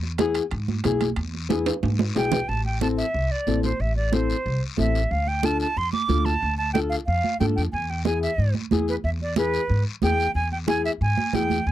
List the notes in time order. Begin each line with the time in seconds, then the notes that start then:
Already playing: E2
0.03 high conga
0.18 B3 E4 G#4, high conga, high timbale, short guiro
0.34 high timbale, short guiro
0.51 G#2, high conga, high timbale, long guiro
0.68 high conga
0.84 B1 B3 E4 G#4, high conga, high timbale, low timbale, short guiro
1.01 high conga, high timbale, short guiro
1.16 E2, high timbale, long guiro
1.35 high conga
1.49 B3 E4 G#4, high conga, high timbale, short guiro
1.66 high timbale, short guiro
1.83 G#2, high conga, high timbale, long guiro
1.99 high conga, low timbale
2.15 B1 B3 E4 G#4 G5, low timbale, short guiro
2.32 low conga, low timbale, short guiro
2.49 A1 A5, long guiro
2.65 G5, high conga
2.81 C4 E4 A4 A5, high conga, short guiro
2.97 E5, short guiro
3.14 C2, high conga, long guiro
3.31 D5
3.47 A1 C4 E4 A4, high conga, short guiro
3.63 C5, high conga, short guiro
3.80 A1 E5, long guiro
3.96 D5, high conga
4.12 C4 E4 A4 C5, high conga, short guiro
4.30 short guiro
4.46 C2, high conga, long guiro
4.77 A1 C4 E4 A4 E5, high conga, short guiro
4.95 short guiro
5.11 D2 F5, long guiro
5.27 G5, high conga
5.43 D4 F4 A4 A5, high conga, short guiro
5.60 A5, short guiro
5.76 F2 C6, high conga, long guiro
5.93 D6, high conga
6.08 D2 D4 F4 A4, high conga, short guiro
6.25 A5, high conga, short guiro
6.42 D2, long guiro
6.58 A5, high conga
6.73 D4 F4 A4 G5, high conga, short guiro
6.89 F5, short guiro
7.06 F2 F5, high conga, long guiro
7.24 high conga
7.40 G#2 D4 F4 A4 G5, high conga, short guiro
7.56 F2 G5, short guiro
7.73 E2 G#5, long guiro
7.89 G5, high conga
8.05 B3 E4 G#4 G#5, high conga, short guiro
8.22 E5, short guiro
8.38 G#2, high conga, long guiro
8.54 high conga
8.71 E2 B3 E4 G#4, high conga, short guiro
8.88 B4, short guiro
9.04 E2 E5, long guiro
9.21 D5, high conga
9.36 B3 E4 G#4 B4, high conga, short guiro
9.54 short guiro
9.69 G#2, high conga, long guiro
10.02 E2 B3 E4 G#4 G5, high conga, short guiro
10.20 short guiro
10.35 E2 G#5, long guiro
10.52 G5, high conga
10.67 B3 E4 G#4 G#5, high conga, short guiro
10.85 E5, short guiro
11.01 G#2 G#5, high conga, long guiro
11.18 high conga
11.33 E2 B3 E4 G#4 G5, high conga, short guiro
11.50 high conga, short guiro
11.67 E2 G#5, long guiro